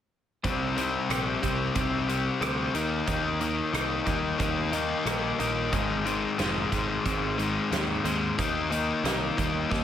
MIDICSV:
0, 0, Header, 1, 5, 480
1, 0, Start_track
1, 0, Key_signature, -3, "minor"
1, 0, Tempo, 661521
1, 320, Time_signature, 4, 2, 24, 8
1, 7139, End_track
2, 0, Start_track
2, 0, Title_t, "Clean electric guitar"
2, 0, Program_c, 0, 27
2, 561, Note_on_c, 0, 63, 50
2, 802, Note_on_c, 0, 67, 60
2, 1270, Note_off_c, 0, 63, 0
2, 1273, Note_on_c, 0, 63, 59
2, 1505, Note_off_c, 0, 67, 0
2, 1514, Note_on_c, 0, 67, 54
2, 1995, Note_off_c, 0, 67, 0
2, 2714, Note_off_c, 0, 63, 0
2, 2956, Note_on_c, 0, 55, 54
2, 3665, Note_off_c, 0, 55, 0
2, 3674, Note_on_c, 0, 55, 55
2, 4155, Note_off_c, 0, 55, 0
2, 4402, Note_on_c, 0, 60, 49
2, 4643, Note_on_c, 0, 63, 64
2, 5113, Note_off_c, 0, 60, 0
2, 5122, Note_on_c, 0, 60, 69
2, 5359, Note_off_c, 0, 63, 0
2, 5362, Note_on_c, 0, 63, 59
2, 5833, Note_off_c, 0, 60, 0
2, 5842, Note_on_c, 0, 60, 64
2, 6081, Note_off_c, 0, 60, 0
2, 6558, Note_off_c, 0, 63, 0
2, 6807, Note_on_c, 0, 55, 51
2, 7139, Note_off_c, 0, 55, 0
2, 7139, End_track
3, 0, Start_track
3, 0, Title_t, "Overdriven electric guitar"
3, 0, Program_c, 1, 29
3, 318, Note_on_c, 1, 48, 69
3, 321, Note_on_c, 1, 55, 71
3, 324, Note_on_c, 1, 60, 78
3, 547, Note_off_c, 1, 48, 0
3, 556, Note_off_c, 1, 60, 0
3, 556, Note_on_c, 1, 48, 71
3, 558, Note_off_c, 1, 55, 0
3, 561, Note_on_c, 1, 55, 68
3, 565, Note_on_c, 1, 60, 72
3, 786, Note_off_c, 1, 48, 0
3, 792, Note_off_c, 1, 60, 0
3, 795, Note_on_c, 1, 48, 69
3, 797, Note_off_c, 1, 55, 0
3, 800, Note_on_c, 1, 55, 69
3, 801, Note_on_c, 1, 60, 75
3, 1024, Note_off_c, 1, 48, 0
3, 1030, Note_off_c, 1, 60, 0
3, 1033, Note_on_c, 1, 48, 74
3, 1036, Note_off_c, 1, 55, 0
3, 1039, Note_on_c, 1, 55, 88
3, 1039, Note_on_c, 1, 60, 79
3, 1260, Note_off_c, 1, 48, 0
3, 1265, Note_off_c, 1, 55, 0
3, 1269, Note_off_c, 1, 60, 0
3, 1269, Note_on_c, 1, 48, 63
3, 1273, Note_on_c, 1, 55, 69
3, 1277, Note_on_c, 1, 60, 81
3, 1498, Note_off_c, 1, 48, 0
3, 1505, Note_off_c, 1, 55, 0
3, 1507, Note_off_c, 1, 60, 0
3, 1507, Note_on_c, 1, 48, 70
3, 1514, Note_on_c, 1, 55, 77
3, 1516, Note_on_c, 1, 60, 79
3, 1741, Note_off_c, 1, 48, 0
3, 1745, Note_off_c, 1, 55, 0
3, 1748, Note_off_c, 1, 60, 0
3, 1750, Note_on_c, 1, 48, 61
3, 1754, Note_on_c, 1, 55, 72
3, 1757, Note_on_c, 1, 60, 76
3, 1979, Note_off_c, 1, 48, 0
3, 1980, Note_off_c, 1, 55, 0
3, 1982, Note_off_c, 1, 60, 0
3, 1991, Note_on_c, 1, 51, 81
3, 1994, Note_on_c, 1, 58, 86
3, 1998, Note_on_c, 1, 63, 88
3, 2220, Note_off_c, 1, 51, 0
3, 2223, Note_off_c, 1, 58, 0
3, 2228, Note_on_c, 1, 51, 72
3, 2231, Note_off_c, 1, 63, 0
3, 2232, Note_on_c, 1, 58, 70
3, 2234, Note_on_c, 1, 63, 81
3, 2461, Note_off_c, 1, 51, 0
3, 2465, Note_off_c, 1, 58, 0
3, 2469, Note_on_c, 1, 51, 62
3, 2473, Note_on_c, 1, 58, 59
3, 2474, Note_off_c, 1, 63, 0
3, 2477, Note_on_c, 1, 63, 67
3, 2698, Note_off_c, 1, 51, 0
3, 2701, Note_off_c, 1, 58, 0
3, 2707, Note_on_c, 1, 51, 73
3, 2709, Note_off_c, 1, 63, 0
3, 2710, Note_on_c, 1, 58, 71
3, 2712, Note_on_c, 1, 63, 82
3, 2935, Note_off_c, 1, 51, 0
3, 2939, Note_off_c, 1, 58, 0
3, 2944, Note_on_c, 1, 51, 76
3, 2948, Note_off_c, 1, 63, 0
3, 2948, Note_on_c, 1, 58, 75
3, 2950, Note_on_c, 1, 63, 85
3, 3171, Note_off_c, 1, 51, 0
3, 3175, Note_off_c, 1, 58, 0
3, 3179, Note_on_c, 1, 51, 63
3, 3183, Note_on_c, 1, 58, 72
3, 3186, Note_off_c, 1, 63, 0
3, 3189, Note_on_c, 1, 63, 79
3, 3418, Note_off_c, 1, 51, 0
3, 3419, Note_off_c, 1, 58, 0
3, 3426, Note_on_c, 1, 51, 79
3, 3428, Note_on_c, 1, 58, 78
3, 3429, Note_off_c, 1, 63, 0
3, 3432, Note_on_c, 1, 63, 92
3, 3663, Note_off_c, 1, 51, 0
3, 3664, Note_off_c, 1, 58, 0
3, 3672, Note_on_c, 1, 51, 69
3, 3673, Note_off_c, 1, 63, 0
3, 3673, Note_on_c, 1, 58, 74
3, 3676, Note_on_c, 1, 63, 67
3, 3903, Note_off_c, 1, 51, 0
3, 3908, Note_off_c, 1, 58, 0
3, 3912, Note_on_c, 1, 51, 64
3, 3915, Note_off_c, 1, 63, 0
3, 3917, Note_on_c, 1, 58, 69
3, 3918, Note_on_c, 1, 63, 76
3, 4140, Note_off_c, 1, 51, 0
3, 4142, Note_off_c, 1, 58, 0
3, 4150, Note_on_c, 1, 44, 72
3, 4154, Note_on_c, 1, 51, 78
3, 4161, Note_on_c, 1, 56, 73
3, 4382, Note_off_c, 1, 44, 0
3, 4386, Note_off_c, 1, 51, 0
3, 4390, Note_off_c, 1, 56, 0
3, 4390, Note_on_c, 1, 44, 60
3, 4395, Note_on_c, 1, 51, 69
3, 4399, Note_on_c, 1, 56, 75
3, 4622, Note_off_c, 1, 44, 0
3, 4627, Note_off_c, 1, 51, 0
3, 4630, Note_off_c, 1, 56, 0
3, 4631, Note_on_c, 1, 44, 74
3, 4635, Note_on_c, 1, 51, 74
3, 4638, Note_on_c, 1, 56, 71
3, 4866, Note_off_c, 1, 44, 0
3, 4868, Note_off_c, 1, 51, 0
3, 4871, Note_off_c, 1, 56, 0
3, 4874, Note_on_c, 1, 44, 79
3, 4876, Note_on_c, 1, 51, 80
3, 4880, Note_on_c, 1, 56, 99
3, 5106, Note_off_c, 1, 44, 0
3, 5108, Note_off_c, 1, 51, 0
3, 5110, Note_off_c, 1, 56, 0
3, 5114, Note_on_c, 1, 44, 72
3, 5117, Note_on_c, 1, 51, 65
3, 5119, Note_on_c, 1, 56, 74
3, 5344, Note_off_c, 1, 44, 0
3, 5349, Note_off_c, 1, 51, 0
3, 5351, Note_off_c, 1, 56, 0
3, 5352, Note_on_c, 1, 44, 79
3, 5357, Note_on_c, 1, 51, 89
3, 5360, Note_on_c, 1, 56, 95
3, 5590, Note_off_c, 1, 44, 0
3, 5592, Note_off_c, 1, 51, 0
3, 5596, Note_off_c, 1, 56, 0
3, 5598, Note_on_c, 1, 44, 64
3, 5601, Note_on_c, 1, 51, 69
3, 5605, Note_on_c, 1, 56, 73
3, 5828, Note_off_c, 1, 44, 0
3, 5831, Note_off_c, 1, 51, 0
3, 5834, Note_off_c, 1, 56, 0
3, 5836, Note_on_c, 1, 44, 67
3, 5839, Note_on_c, 1, 51, 67
3, 5843, Note_on_c, 1, 56, 83
3, 6064, Note_off_c, 1, 44, 0
3, 6065, Note_off_c, 1, 51, 0
3, 6067, Note_off_c, 1, 56, 0
3, 6078, Note_on_c, 1, 51, 65
3, 6083, Note_off_c, 1, 63, 0
3, 6083, Note_on_c, 1, 58, 76
3, 6086, Note_on_c, 1, 63, 76
3, 6307, Note_off_c, 1, 51, 0
3, 6310, Note_off_c, 1, 58, 0
3, 6313, Note_off_c, 1, 63, 0
3, 6316, Note_on_c, 1, 51, 72
3, 6319, Note_on_c, 1, 58, 66
3, 6322, Note_on_c, 1, 63, 80
3, 6550, Note_off_c, 1, 51, 0
3, 6557, Note_off_c, 1, 58, 0
3, 6559, Note_on_c, 1, 51, 64
3, 6560, Note_off_c, 1, 63, 0
3, 6566, Note_on_c, 1, 58, 78
3, 6569, Note_on_c, 1, 63, 74
3, 6790, Note_off_c, 1, 51, 0
3, 6792, Note_off_c, 1, 58, 0
3, 6795, Note_off_c, 1, 63, 0
3, 6799, Note_on_c, 1, 51, 79
3, 6801, Note_on_c, 1, 58, 86
3, 6804, Note_on_c, 1, 63, 81
3, 7027, Note_off_c, 1, 51, 0
3, 7029, Note_off_c, 1, 58, 0
3, 7036, Note_off_c, 1, 63, 0
3, 7036, Note_on_c, 1, 51, 70
3, 7038, Note_on_c, 1, 58, 74
3, 7044, Note_on_c, 1, 63, 72
3, 7139, Note_off_c, 1, 51, 0
3, 7139, Note_off_c, 1, 58, 0
3, 7139, Note_off_c, 1, 63, 0
3, 7139, End_track
4, 0, Start_track
4, 0, Title_t, "Picked electric bass"
4, 0, Program_c, 2, 34
4, 322, Note_on_c, 2, 36, 67
4, 699, Note_off_c, 2, 36, 0
4, 794, Note_on_c, 2, 34, 77
4, 985, Note_off_c, 2, 34, 0
4, 1040, Note_on_c, 2, 36, 71
4, 1228, Note_off_c, 2, 36, 0
4, 1275, Note_on_c, 2, 36, 70
4, 1654, Note_off_c, 2, 36, 0
4, 1748, Note_on_c, 2, 38, 82
4, 1941, Note_off_c, 2, 38, 0
4, 1991, Note_on_c, 2, 39, 70
4, 2182, Note_off_c, 2, 39, 0
4, 2234, Note_on_c, 2, 39, 77
4, 2613, Note_off_c, 2, 39, 0
4, 2708, Note_on_c, 2, 36, 80
4, 2901, Note_off_c, 2, 36, 0
4, 2953, Note_on_c, 2, 39, 75
4, 3144, Note_off_c, 2, 39, 0
4, 3190, Note_on_c, 2, 39, 75
4, 3571, Note_off_c, 2, 39, 0
4, 3665, Note_on_c, 2, 34, 80
4, 3859, Note_off_c, 2, 34, 0
4, 3914, Note_on_c, 2, 34, 74
4, 4155, Note_off_c, 2, 34, 0
4, 4155, Note_on_c, 2, 32, 72
4, 4535, Note_off_c, 2, 32, 0
4, 4638, Note_on_c, 2, 29, 75
4, 4827, Note_off_c, 2, 29, 0
4, 4877, Note_on_c, 2, 32, 71
4, 5067, Note_off_c, 2, 32, 0
4, 5117, Note_on_c, 2, 32, 70
4, 5497, Note_off_c, 2, 32, 0
4, 5596, Note_on_c, 2, 39, 77
4, 5787, Note_off_c, 2, 39, 0
4, 5836, Note_on_c, 2, 39, 73
4, 6027, Note_off_c, 2, 39, 0
4, 6082, Note_on_c, 2, 39, 78
4, 6461, Note_off_c, 2, 39, 0
4, 6556, Note_on_c, 2, 36, 77
4, 6748, Note_off_c, 2, 36, 0
4, 6809, Note_on_c, 2, 39, 74
4, 6996, Note_off_c, 2, 39, 0
4, 7048, Note_on_c, 2, 39, 71
4, 7139, Note_off_c, 2, 39, 0
4, 7139, End_track
5, 0, Start_track
5, 0, Title_t, "Drums"
5, 321, Note_on_c, 9, 36, 78
5, 321, Note_on_c, 9, 42, 63
5, 394, Note_off_c, 9, 36, 0
5, 394, Note_off_c, 9, 42, 0
5, 563, Note_on_c, 9, 42, 54
5, 636, Note_off_c, 9, 42, 0
5, 800, Note_on_c, 9, 42, 67
5, 805, Note_on_c, 9, 37, 73
5, 872, Note_off_c, 9, 42, 0
5, 878, Note_off_c, 9, 37, 0
5, 1038, Note_on_c, 9, 36, 66
5, 1041, Note_on_c, 9, 42, 52
5, 1111, Note_off_c, 9, 36, 0
5, 1113, Note_off_c, 9, 42, 0
5, 1272, Note_on_c, 9, 42, 67
5, 1276, Note_on_c, 9, 36, 88
5, 1345, Note_off_c, 9, 42, 0
5, 1348, Note_off_c, 9, 36, 0
5, 1519, Note_on_c, 9, 42, 55
5, 1591, Note_off_c, 9, 42, 0
5, 1756, Note_on_c, 9, 42, 64
5, 1762, Note_on_c, 9, 37, 91
5, 1829, Note_off_c, 9, 42, 0
5, 1835, Note_off_c, 9, 37, 0
5, 1992, Note_on_c, 9, 42, 56
5, 2065, Note_off_c, 9, 42, 0
5, 2230, Note_on_c, 9, 42, 61
5, 2232, Note_on_c, 9, 36, 85
5, 2302, Note_off_c, 9, 42, 0
5, 2304, Note_off_c, 9, 36, 0
5, 2472, Note_on_c, 9, 42, 54
5, 2545, Note_off_c, 9, 42, 0
5, 2716, Note_on_c, 9, 42, 62
5, 2722, Note_on_c, 9, 37, 77
5, 2789, Note_off_c, 9, 42, 0
5, 2794, Note_off_c, 9, 37, 0
5, 2949, Note_on_c, 9, 42, 46
5, 2951, Note_on_c, 9, 36, 71
5, 3021, Note_off_c, 9, 42, 0
5, 3024, Note_off_c, 9, 36, 0
5, 3190, Note_on_c, 9, 42, 66
5, 3192, Note_on_c, 9, 36, 89
5, 3262, Note_off_c, 9, 42, 0
5, 3264, Note_off_c, 9, 36, 0
5, 3431, Note_on_c, 9, 42, 52
5, 3503, Note_off_c, 9, 42, 0
5, 3674, Note_on_c, 9, 42, 62
5, 3680, Note_on_c, 9, 37, 87
5, 3747, Note_off_c, 9, 42, 0
5, 3753, Note_off_c, 9, 37, 0
5, 3916, Note_on_c, 9, 42, 57
5, 3988, Note_off_c, 9, 42, 0
5, 4155, Note_on_c, 9, 42, 62
5, 4156, Note_on_c, 9, 36, 88
5, 4228, Note_off_c, 9, 42, 0
5, 4229, Note_off_c, 9, 36, 0
5, 4401, Note_on_c, 9, 42, 56
5, 4474, Note_off_c, 9, 42, 0
5, 4635, Note_on_c, 9, 42, 65
5, 4641, Note_on_c, 9, 38, 77
5, 4708, Note_off_c, 9, 42, 0
5, 4714, Note_off_c, 9, 38, 0
5, 4878, Note_on_c, 9, 36, 75
5, 4878, Note_on_c, 9, 42, 55
5, 4950, Note_off_c, 9, 36, 0
5, 4951, Note_off_c, 9, 42, 0
5, 5120, Note_on_c, 9, 36, 93
5, 5121, Note_on_c, 9, 42, 76
5, 5193, Note_off_c, 9, 36, 0
5, 5194, Note_off_c, 9, 42, 0
5, 5364, Note_on_c, 9, 42, 51
5, 5436, Note_off_c, 9, 42, 0
5, 5604, Note_on_c, 9, 42, 75
5, 5610, Note_on_c, 9, 38, 86
5, 5677, Note_off_c, 9, 42, 0
5, 5683, Note_off_c, 9, 38, 0
5, 5843, Note_on_c, 9, 42, 63
5, 5916, Note_off_c, 9, 42, 0
5, 6086, Note_on_c, 9, 36, 84
5, 6089, Note_on_c, 9, 42, 67
5, 6158, Note_off_c, 9, 36, 0
5, 6161, Note_off_c, 9, 42, 0
5, 6328, Note_on_c, 9, 42, 62
5, 6400, Note_off_c, 9, 42, 0
5, 6568, Note_on_c, 9, 42, 67
5, 6574, Note_on_c, 9, 38, 85
5, 6640, Note_off_c, 9, 42, 0
5, 6646, Note_off_c, 9, 38, 0
5, 6807, Note_on_c, 9, 36, 72
5, 6812, Note_on_c, 9, 42, 46
5, 6880, Note_off_c, 9, 36, 0
5, 6885, Note_off_c, 9, 42, 0
5, 7049, Note_on_c, 9, 36, 92
5, 7057, Note_on_c, 9, 38, 47
5, 7121, Note_off_c, 9, 36, 0
5, 7130, Note_off_c, 9, 38, 0
5, 7139, End_track
0, 0, End_of_file